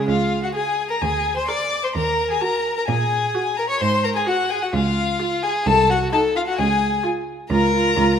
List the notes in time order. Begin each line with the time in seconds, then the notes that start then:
0.08 C#2 F4 F5
0.43 F#4 F#5
0.54 G#4 G#5
0.90 A#4 A#5
1.02 D2 G#4 G#5
1.36 C5 C6
1.48 A#4 D5 D6
1.84 C5 C6
1.95 D#2 A#4 A#5
2.31 G#4 G#5
2.41 F#4 A#4 A#5
2.77 A#4 A#5
2.88 A#2 G#4 G#5
3.34 F#4
3.57 A#4 A#5
3.69 C#5 C#6
3.80 G#2 C5 C6
4.04 A#4 A#5
4.16 G#4 G#5
4.26 F#4 F#5
4.50 G#4 G#5
4.62 F#4 F#5
4.73 C#2 F4 F5
5.20 F4
5.43 G#4 G#5
5.66 C2 A4 A5
5.90 F#4 F#5
6.12 D#4 A4 A5
6.36 F4 F5
6.47 F#4 F#5
6.59 C#2 G#4 G#5
7.04 F4
7.50 C#2 F4 A#4 A#5
7.74 F4
7.96 C#2 F4